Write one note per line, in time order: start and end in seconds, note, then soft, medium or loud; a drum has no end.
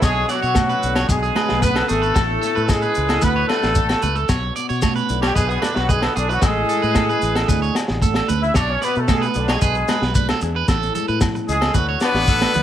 0.00 0.23 B1 medium
0.00 0.83 B2 medium
0.00 0.82 D3 medium
0.00 0.29 G#3 medium
0.00 0.29 G#4 medium
0.00 0.28 C#5 medium
0.00 kick medium
0.00 snare medium
0.00 muted conga soft
0.00 low agogo medium
0.00 shekere medium
0.29 1.05 F#3 medium
0.29 1.07 B3 medium
0.29 1.05 F#4 medium
0.29 0.42 D5 medium
0.29 snare soft
0.29 shekere medium
0.42 0.73 B2 medium
0.42 0.55 C#5 medium
0.42 shekere soft
0.55 0.83 C#4 medium
0.55 kick medium
0.55 snare medium
0.55 muted conga soft
0.55 high conga medium
0.55 low agogo medium
0.55 shekere loud
0.69 0.95 B4 medium
0.69 shekere soft
0.83 1.03 B1 medium
0.83 2.96 D3 medium
0.83 1.07 C#4 medium
0.83 shekere medium
0.95 1.08 C#5 medium
0.95 snare medium
0.95 low agogo medium
0.95 shekere soft
1.08 1.29 B1 loud
1.08 1.64 B2 medium
1.08 1.62 G#3 medium
1.08 1.62 G#4 medium
1.08 muted clean electric guitar stroke medium
1.08 kick medium
1.08 muted conga soft
1.08 shekere loud
1.23 1.35 G#4 medium
1.23 shekere soft
1.35 2.14 B3 medium
1.35 1.61 B4 medium
1.35 snare medium
1.35 muted conga soft
1.35 high conga medium
1.35 low agogo medium
1.49 1.81 B1 medium
1.49 snare medium
1.61 1.90 C#3 medium
1.61 1.88 B3 medium
1.61 1.88 B4 loud
1.61 1.75 B4 medium
1.61 kick medium
1.61 high conga medium
1.61 shekere medium
1.75 1.88 A4 medium
1.75 snare medium
1.75 low agogo medium
1.87 2.10 G#1 loud
1.87 2.16 B2 medium
1.87 2.64 A3 medium
1.87 2.01 G#4 medium
1.87 2.64 A4 medium
1.87 shekere medium
2.02 2.15 B4 medium
2.02 shekere soft
2.14 2.36 A1 loud
2.14 3.23 A2 medium
2.14 2.40 A4 medium
2.14 kick medium
2.14 snare medium
2.14 muted conga soft
2.14 low agogo medium
2.14 shekere medium
2.41 3.20 A3 medium
2.41 2.55 A4 medium
2.41 snare soft
2.41 shekere medium
2.55 2.87 A2 medium
2.55 2.68 B4 medium
2.55 shekere soft
2.68 3.22 G#3 medium
2.68 3.20 C#4 medium
2.68 3.22 G#4 medium
2.68 2.82 A4 medium
2.68 kick loud
2.68 snare medium
2.68 muted conga soft
2.68 high conga loud
2.68 low agogo medium
2.68 shekere medium
2.82 3.08 B4 medium
2.82 shekere soft
2.95 3.17 C#2 medium
2.95 3.20 E3 medium
2.95 3.23 E4 medium
2.95 shekere medium
3.09 3.22 A4 medium
3.09 snare medium
3.09 low agogo medium
3.09 shekere soft
3.22 3.43 D2 medium
3.22 3.74 D3 medium
3.22 4.27 A3 medium
3.22 3.49 B3 medium
3.22 3.49 D4 medium
3.22 4.27 F#4 medium
3.22 3.35 B4 medium
3.22 3.49 B4 medium
3.22 kick medium
3.22 snare soft
3.22 muted conga soft
3.22 high conga loud
3.22 shekere loud
3.36 3.48 C#5 medium
3.48 4.25 A3 medium
3.48 3.63 B3 medium
3.48 4.25 A4 medium
3.48 3.74 B4 medium
3.48 snare medium
3.48 low agogo medium
3.62 3.93 A1 medium
3.62 4.30 D4 soft
3.62 snare medium
3.62 shekere soft
3.75 4.02 D3 medium
3.75 3.88 A4 medium
3.75 kick medium
3.75 high conga medium
3.75 shekere loud
3.89 4.02 A4 medium
3.89 snare medium
3.89 low agogo medium
3.89 shekere soft
4.02 4.23 C#2 medium
4.02 4.15 B4 medium
4.02 muted nylon-string guitar stroke medium
4.02 high conga medium
4.02 shekere medium
4.16 4.28 A4 medium
4.16 shekere soft
4.29 4.50 B1 loud
4.29 5.09 B2 medium
4.29 4.55 C#5 medium
4.29 kick medium
4.29 snare medium
4.29 muted conga soft
4.29 low agogo medium
4.29 shekere loud
4.56 5.33 B3 medium
4.56 4.69 D5 medium
4.56 shekere medium
4.69 5.00 B2 medium
4.69 4.81 C#5 medium
4.69 shekere soft
4.82 5.34 C#4 medium
4.82 4.95 C#5 medium
4.82 kick medium
4.82 snare medium
4.82 muted conga soft
4.82 high conga loud
4.82 low agogo medium
4.82 shekere medium
4.96 5.21 B4 medium
4.96 shekere soft
5.09 5.30 B1 medium
5.09 6.16 D3 medium
5.09 5.23 E4 medium
5.09 shekere medium
5.22 5.35 G3 medium
5.22 5.36 F#4 medium
5.22 5.35 G4 medium
5.22 5.35 C#5 medium
5.22 snare medium
5.22 low agogo medium
5.22 shekere soft
5.35 5.56 B1 medium
5.35 6.17 B2 medium
5.35 5.49 G#3 medium
5.35 5.49 G#4 medium
5.35 5.48 B4 medium
5.35 kick medium
5.35 snare soft
5.35 muted conga soft
5.35 shekere loud
5.49 5.62 B3 medium
5.49 5.62 G#4 medium
5.49 shekere soft
5.61 5.75 D3 medium
5.61 5.75 D4 medium
5.61 5.88 B4 medium
5.61 snare medium
5.61 muted conga soft
5.61 high conga medium
5.61 low agogo medium
5.61 shekere medium
5.75 6.07 B1 medium
5.75 5.89 F#3 medium
5.75 5.89 F#4 medium
5.75 snare medium
5.89 6.03 G#3 medium
5.89 6.40 D4 medium
5.89 6.03 G#4 medium
5.89 6.02 B4 medium
5.89 kick medium
5.89 high conga medium
5.89 shekere medium
6.02 6.16 B3 medium
6.02 6.15 A4 medium
6.02 snare medium
6.02 low agogo medium
6.16 6.37 B1 loud
6.16 6.30 D3 medium
6.16 6.40 E3 medium
6.16 6.30 D4 medium
6.16 6.29 G#4 medium
6.16 6.40 G#4 medium
6.16 shekere medium
6.29 6.43 F#3 medium
6.29 6.43 F#4 medium
6.29 6.42 B4 medium
6.29 shekere soft
6.42 6.63 A1 medium
6.42 7.49 A2 medium
6.42 7.21 E3 medium
6.42 8.03 G#3 medium
6.42 6.68 G#3 medium
6.42 6.94 C#4 medium
6.42 8.03 G#4 medium
6.42 6.68 A4 medium
6.42 kick loud
6.42 snare medium
6.42 muted conga soft
6.42 low agogo medium
6.42 shekere medium
6.69 7.46 G#3 medium
6.69 6.82 A4 medium
6.69 shekere medium
6.82 7.13 A2 medium
6.82 6.95 B4 medium
6.82 shekere soft
6.95 7.09 A4 medium
6.95 kick medium
6.95 snare medium
6.95 muted conga soft
6.95 high conga medium
6.95 low agogo medium
6.95 shekere medium
7.09 7.35 B4 medium
7.09 shekere soft
7.22 7.43 A1 medium
7.22 7.46 C#4 medium
7.22 shekere medium
7.35 7.48 A4 medium
7.35 snare medium
7.35 low agogo medium
7.35 shekere soft
7.48 7.69 D2 loud
7.48 8.01 D3 medium
7.48 7.61 B4 medium
7.48 kick medium
7.48 snare soft
7.48 muted conga soft
7.48 high conga loud
7.48 shekere loud
7.62 7.75 C#5 medium
7.62 shekere soft
7.75 8.53 D4 medium
7.75 snare medium
7.75 muted conga soft
7.75 low agogo medium
7.75 shekere medium
7.88 8.20 A1 medium
7.88 snare medium
8.02 8.29 D3 medium
8.02 8.15 A4 medium
8.02 kick medium
8.02 high conga medium
8.02 shekere medium
8.14 8.28 A4 medium
8.14 snare medium
8.14 low agogo medium
8.28 8.50 D2 medium
8.28 8.55 C#3 medium
8.28 8.41 B4 medium
8.28 high conga medium
8.28 shekere medium
8.42 8.55 E4 medium
8.42 8.55 E5 medium
8.42 shekere soft
8.54 8.76 B1 loud
8.54 9.35 B2 medium
8.54 8.70 D4 medium
8.54 8.81 C#5 medium
8.54 8.70 D5 medium
8.54 kick medium
8.54 snare medium
8.54 low agogo medium
8.54 shekere medium
8.71 8.83 C#4 medium
8.71 8.83 C#5 medium
8.82 9.59 B3 medium
8.82 8.96 B3 medium
8.82 8.96 B4 medium
8.82 8.95 D5 medium
8.82 snare soft
8.82 shekere medium
8.96 9.26 B2 medium
8.96 9.10 A3 medium
8.96 9.10 A4 medium
8.96 shekere soft
9.08 9.23 G#3 medium
9.08 9.59 C#4 medium
9.08 9.23 G#4 medium
9.08 9.21 A4 medium
9.08 kick medium
9.08 snare medium
9.08 muted conga soft
9.08 high conga loud
9.08 low agogo medium
9.08 shekere medium
9.22 9.47 B4 medium
9.22 shekere soft
9.26 9.37 B3 medium
9.34 9.56 B1 medium
9.34 10.42 D3 medium
9.34 9.50 D3 medium
9.34 9.50 D4 medium
9.34 9.59 F#4 medium
9.34 shekere medium
9.48 10.03 G#3 medium
9.48 10.03 G#4 medium
9.48 9.61 C#5 medium
9.48 snare medium
9.48 low agogo medium
9.48 shekere soft
9.61 9.82 B1 loud
9.61 10.41 B2 medium
9.61 9.75 B4 medium
9.61 kick medium
9.61 muted conga soft
9.61 shekere loud
9.75 muted clean electric guitar stroke medium
9.75 shekere soft
9.88 10.65 G#3 medium
9.88 10.14 B4 medium
9.88 snare medium
9.88 muted conga soft
9.88 high conga medium
9.88 low agogo medium
9.88 shekere medium
10.02 10.32 B1 medium
10.02 snare medium
10.15 10.66 D4 medium
10.15 10.28 B4 medium
10.15 kick medium
10.15 high conga medium
10.15 shekere medium
10.29 10.42 A4 medium
10.29 snare medium
10.29 low agogo medium
10.41 10.62 E2 medium
10.41 10.65 E3 medium
10.41 10.66 G#4 medium
10.41 muted clean electric guitar stroke medium
10.41 shekere medium
10.56 10.68 B4 medium
10.68 10.89 A1 loud
10.68 11.75 A2 medium
10.68 10.94 A4 medium
10.68 kick loud
10.68 snare medium
10.68 low agogo medium
10.68 shekere medium
10.83 shekere soft
10.95 11.72 G#3 medium
10.95 11.08 A4 medium
10.95 low conga medium
10.95 shekere medium
11.08 11.39 A2 loud
11.08 11.21 B4 medium
11.08 shekere soft
11.21 11.48 C#4 medium
11.21 muted clean electric guitar stroke medium
11.21 kick loud
11.21 snare medium
11.21 muted conga soft
11.21 high conga medium
11.21 low conga medium
11.21 low agogo medium
11.21 shekere medium
11.35 muted clean electric guitar stroke medium
11.35 shekere soft
11.48 11.68 C#2 medium
11.48 11.72 E3 medium
11.48 11.73 G#3 medium
11.48 11.72 C#4 medium
11.48 11.73 G#4 medium
11.48 shekere medium
11.61 11.74 A4 medium
11.61 snare medium
11.61 low agogo medium
11.74 11.95 D2 medium
11.74 12.63 D3 medium
11.74 12.28 F#3 medium
11.74 12.28 F#4 medium
11.74 11.87 B4 medium
11.74 kick medium
11.74 muted conga soft
11.74 high conga loud
11.74 shekere loud
11.89 12.01 C#5 medium
12.00 12.63 B3 loud
12.00 12.63 D4 medium
12.00 12.63 B4 loud
12.00 12.27 D5 medium
12.00 snare medium
12.00 muted conga soft
12.00 low agogo medium
12.00 shekere medium
12.14 12.44 A1 medium
12.14 snare medium
12.14 shekere soft
12.28 12.54 F#4 medium
12.28 12.41 A4 medium
12.28 kick medium
12.28 high conga medium
12.28 shekere loud
12.41 12.54 A4 medium
12.41 snare medium
12.41 high conga medium
12.41 low agogo medium
12.54 12.63 D2 medium
12.54 12.63 A3 medium
12.54 12.63 F#4 medium
12.54 12.63 B4 medium
12.54 high tom medium
12.54 low conga medium
12.54 shekere medium